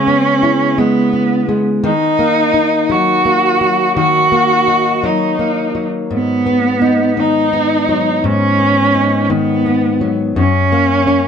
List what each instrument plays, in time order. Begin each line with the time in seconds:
Already playing: steel-string acoustic guitar C#3 G#3, cello C#4
0.08 steel-string acoustic guitar B3
0.43 steel-string acoustic guitar E4
0.78 steel-string acoustic guitar G#3, cello B3
1.13 steel-string acoustic guitar B3
1.49 steel-string acoustic guitar G#3
1.84 steel-string acoustic guitar D#3, cello D#4
2.19 steel-string acoustic guitar A#3
2.54 steel-string acoustic guitar D#4
2.90 steel-string acoustic guitar F#3, cello F#4
3.25 steel-string acoustic guitar A#3
3.61 steel-string acoustic guitar F#3
3.97 steel-string acoustic guitar D#3, cello F#4
4.32 steel-string acoustic guitar A#3
4.68 steel-string acoustic guitar D#4
5.04 steel-string acoustic guitar F#3, cello D#4
5.39 steel-string acoustic guitar A#3
5.75 steel-string acoustic guitar F#3
6.11 steel-string acoustic guitar G#2, cello B3
6.46 steel-string acoustic guitar B3
6.82 steel-string acoustic guitar D#4
7.17 steel-string acoustic guitar D#3, cello D#4
7.53 steel-string acoustic guitar B3
7.89 steel-string acoustic guitar F#3
8.24 steel-string acoustic guitar G#2, cello C#4
8.59 steel-string acoustic guitar B3
8.95 steel-string acoustic guitar D#4
9.24 cello C#4
9.30 steel-string acoustic guitar D#3, cello B3
9.66 steel-string acoustic guitar B3
10.01 steel-string acoustic guitar F#3
10.36 steel-string acoustic guitar F#2, cello C#4
10.72 steel-string acoustic guitar A#3
11.07 steel-string acoustic guitar C#4